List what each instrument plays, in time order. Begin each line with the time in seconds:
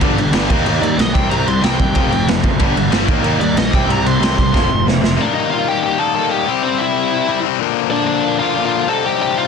0.00 picked electric bass G1, distorted electric guitar G2 D3 G3, kick, crash
0.16 picked electric bass G1, distorted electric guitar G2 D3, crash
0.32 picked electric bass G1, distorted electric guitar G2 D3 G3, snare, crash
0.49 picked electric bass D#2, distorted electric guitar D#3 G3 A#3 D#4, overdriven electric guitar D#4, kick, crash
0.64 picked electric bass D#2, distorted electric guitar D#3 G3 A#3 D#4, overdriven electric guitar D#4, crash
0.81 picked electric bass D#2, distorted electric guitar D#3 G3 A#3, lead electric guitar D5, crash
0.98 picked electric bass B1, distorted electric guitar D#3 G3 A#3, overdriven electric guitar A#3 D#4, lead electric guitar D#5, snare, crash
1.13 picked electric bass C2, distorted electric guitar C3 G3 C4, lead electric guitar G5, kick, crash
1.30 picked electric bass C2, distorted electric guitar C3 G3 C4, lead electric guitar A#5, crash
1.47 picked electric bass C2, distorted electric guitar C3 G3, lead electric guitar C6, crash
1.61 picked electric bass C2, distorted electric guitar C3 G3 C4, lead electric guitar G5, snare, crash
1.78 picked electric bass D#2, distorted electric guitar C3 G3, overdriven electric guitar C4, kick, crash
1.95 picked electric bass F1, distorted electric guitar F2 C3 F3, kick, crash
2.12 picked electric bass F1, distorted electric guitar F2 C3, crash
2.26 picked electric bass F1, distorted electric guitar F2 C3, overdriven electric guitar F3, snare, crash
2.43 picked electric bass F#1, distorted electric guitar F2 C3, overdriven electric guitar F3, kick, crash
2.59 picked electric bass G1, distorted electric guitar G2 D3 G3, kick, crash
2.74 picked electric bass G1, distorted electric guitar G2 D3, crash
2.90 picked electric bass G1, distorted electric guitar G2 D3 G3, snare, crash
3.07 picked electric bass D#2, distorted electric guitar D#3 G3 A#3 D#4, overdriven electric guitar D#4, kick, crash
3.23 picked electric bass D#2, distorted electric guitar D#3 G3 A#3 D#4, overdriven electric guitar D#4, crash
3.39 picked electric bass D#2, distorted electric guitar D#3 G3 A#3, lead electric guitar D5, crash
3.55 picked electric bass A#1, distorted electric guitar D#3 G3 A#3, overdriven electric guitar A#3 D#4, lead electric guitar D#5, snare, crash
3.71 picked electric bass C2, distorted electric guitar C3 G3 C4, kick, crash
3.75 lead electric guitar G5
3.87 picked electric bass C2, distorted electric guitar C3 G3 C4, crash
3.91 lead electric guitar A#5
4.03 picked electric bass C2, distorted electric guitar C3 G3, lead electric guitar C6, crash
4.19 picked electric bass C2, distorted electric guitar C3 G3 C4, crash
4.23 lead electric guitar C6, snare
4.36 picked electric bass C2, distorted electric guitar C3 G3, overdriven electric guitar C4, kick, crash
4.53 picked electric bass F1, distorted electric guitar F2 C3 F3, kick, snare
4.69 picked electric bass F1, distorted electric guitar F2 C3
4.85 picked electric bass F1, distorted electric guitar F2 C3, overdriven electric guitar F3, snare
5.01 picked electric bass F1, distorted electric guitar F2 C3, overdriven electric guitar F3, snare
5.16 distorted electric guitar D#3 G3 A#3 D#4
5.21 lead electric guitar D4 D5
5.34 lead electric guitar D#4 D#5
5.51 lead electric guitar F4 F5
5.68 lead electric guitar G4 G5
5.84 lead electric guitar G4 G5
5.98 distorted electric guitar D#3 G3 A#3 D#4, lead electric guitar A5
6.02 lead electric guitar A4
6.14 distorted electric guitar D#3 G3 A#3 D#4, lead electric guitar A5
6.19 lead electric guitar A4
6.31 lead electric guitar G4 G5
6.47 distorted electric guitar C3 G3 C4 E4
6.63 lead electric guitar C4 C5
6.78 lead electric guitar E4 E5
7.27 distorted electric guitar C3 G3 C4 E4
7.43 distorted electric guitar C3 G3 C4 E4
7.60 distorted electric guitar A#2 D3 F3 A#3 D4
7.91 lead electric guitar D4 D5
8.07 lead electric guitar D4 D5
8.39 distorted electric guitar A#2 D3 F3 A#3 D4, lead electric guitar F4 F5
8.56 distorted electric guitar A#2 D3 F3 A#3 D4
8.65 lead electric guitar F4 F5
8.87 distorted electric guitar C3 G3 C4 D#4, lead electric guitar A4 A5
9.05 lead electric guitar G4 G5
9.21 lead electric guitar G4 G5
9.37 lead electric guitar F4 F5